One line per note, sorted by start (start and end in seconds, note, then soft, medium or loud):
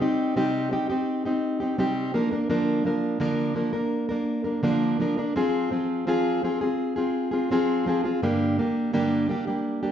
0.00 0.36 G3 medium
0.00 0.35 C4 medium
0.00 0.36 D#4 medium
0.00 0.36 G4 medium
0.36 0.72 C3 medium
0.36 0.70 G3 medium
0.36 0.70 C4 medium
0.36 0.71 D#4 medium
0.36 0.72 G4 loud
0.71 0.89 G3 medium
0.71 0.89 C4 medium
0.71 0.89 D#4 medium
0.71 0.88 G4 medium
0.90 1.26 C4 soft
0.90 1.25 D#4 medium
0.90 1.24 G4 medium
1.25 1.61 C4 medium
1.25 1.60 D#4 medium
1.25 1.59 G4 medium
1.60 1.78 C4 soft
1.60 1.78 D#4 soft
1.60 1.78 G4 soft
1.78 2.14 C3 medium
1.78 2.13 G3 medium
1.78 2.14 C4 medium
1.78 2.15 D#4 medium
1.78 2.15 G4 medium
2.14 2.32 F3 medium
2.14 2.32 A#3 medium
2.14 2.31 D4 medium
2.14 2.30 A#4 medium
2.31 2.49 A#3 soft
2.31 2.49 D4 medium
2.31 2.49 A#4 medium
2.50 2.86 D3 medium
2.50 2.84 F3 medium
2.50 2.85 A#3 medium
2.50 2.85 D4 medium
2.50 2.86 A#4 loud
2.85 3.20 F3 medium
2.85 3.20 A#3 medium
2.85 3.20 D4 medium
2.85 3.20 A#4 medium
3.20 3.57 D3 medium
3.20 3.54 F3 medium
3.20 3.55 A#3 medium
3.20 3.55 D4 loud
3.20 3.56 A#4 medium
3.55 3.74 F3 medium
3.55 3.74 A#3 medium
3.55 3.73 D4 medium
3.55 3.72 A#4 medium
3.73 4.10 A#3 soft
3.73 4.09 D4 soft
3.73 4.08 A#4 medium
4.09 4.45 A#3 medium
4.09 4.44 D4 medium
4.09 4.43 A#4 medium
4.44 4.62 A#3 soft
4.44 4.63 D4 soft
4.44 4.63 A#4 medium
4.63 4.99 D3 medium
4.63 4.98 F3 medium
4.63 4.99 A#3 medium
4.63 5.00 D4 medium
4.63 5.00 A#4 medium
5.00 5.18 F3 medium
5.00 5.18 A#3 medium
5.00 5.18 D4 medium
5.00 5.16 A#4 medium
5.17 5.35 A#3 soft
5.17 5.36 D4 medium
5.17 5.36 A#4 medium
5.36 5.70 F3 medium
5.36 5.71 C4 medium
5.36 5.72 F4 medium
5.36 5.72 G#4 loud
5.71 6.06 F3 medium
5.71 6.06 C4 medium
5.71 6.07 F4 medium
5.71 6.08 G#4 medium
6.07 6.42 F3 medium
6.07 6.43 C4 medium
6.07 6.43 F4 medium
6.07 6.44 G#4 loud
6.43 6.61 F3 medium
6.43 6.62 C4 medium
6.43 6.61 F4 medium
6.43 6.60 G#4 medium
6.61 6.97 C4 soft
6.61 6.96 F4 medium
6.61 6.95 G#4 medium
6.96 7.32 C4 medium
6.96 7.32 F4 medium
6.96 7.30 G#4 medium
7.31 7.50 C4 soft
7.31 7.51 F4 medium
7.31 7.50 G#4 medium
7.51 7.85 F3 medium
7.51 7.86 C4 medium
7.51 7.87 F4 medium
7.51 7.87 G#4 medium
7.86 8.04 F3 medium
7.86 8.05 C4 medium
7.86 8.04 F4 medium
7.86 8.03 G#4 medium
8.04 8.23 C4 medium
8.04 8.23 F4 medium
8.04 8.22 G#4 medium
8.22 8.58 G2 medium
8.22 8.58 D3 medium
8.22 8.57 G3 medium
8.22 8.58 A#3 medium
8.22 8.58 D4 medium
8.22 8.59 G4 medium
8.58 8.93 G3 medium
8.58 8.92 A#3 medium
8.58 8.93 D4 medium
8.58 8.93 G4 medium
8.93 9.29 G2 medium
8.93 9.29 D3 medium
8.93 9.28 G3 medium
8.93 9.28 A#3 medium
8.93 9.29 D4 medium
8.93 9.30 G4 loud
9.29 9.47 G3 medium
9.29 9.47 A#3 medium
9.29 9.46 D4 medium
9.29 9.46 G4 medium
9.47 9.83 G3 soft
9.47 9.83 A#3 medium
9.47 9.82 D4 medium
9.47 9.82 G4 medium
9.83 9.92 G3 soft
9.83 9.92 A#3 medium
9.83 9.92 D4 medium
9.83 9.92 G4 medium